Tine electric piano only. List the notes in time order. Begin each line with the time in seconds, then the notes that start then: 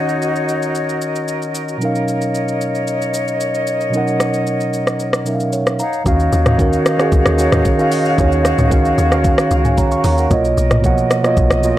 Already playing: D#3 C#4 F#4 F#5
1.78 B2 F#3 C#4
1.82 D#4 A#4 F5
3.90 B2 F#3 C#4
3.95 D#4 A#4 F#5
5.25 B2 F#3 C#4 D#4 A#4 E5
5.35 F5
5.53 C#5
5.80 A#5
6.04 D#3 C#4 F#4 F5
6.57 D#3 C#4 F#4 A#4
6.98 D#3 C#4 F#4 G#4
7.37 D#3 C#4 F#4 C#5
7.77 D#3 C#4 F#4 F5
8.17 D#3 C#4 F#4 C#5
8.70 D#3 C#4 F#4 F5
9.10 D#3 C#4 F#4 F5
9.65 G#5
9.78 C#5 A#5
9.92 F5 C#6
10.05 C#5 A#5
10.18 A#4 F#5
10.29 B2 A#3 F4 C#5 D#5
10.82 B2 F3 A#3 C#5 F#5
11.23 B2 A#3 F4 C#5 D#5
11.62 B2 A#3 F4 C#5 D#5